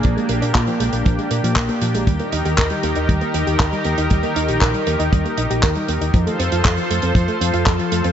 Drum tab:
HH |xxxxxxxxxxxxxxxx|xxxxxxxxxxxxxxxx|xxxxxxxxxxxxxxxx|xxxxxxxxxxxxxxxx|
CP |----x-------x---|----x-------x---|----x-------x---|----x-------x---|
BD |o---o---o---o---|o---o---o---o---|o---o---o---o---|o---o---o---o---|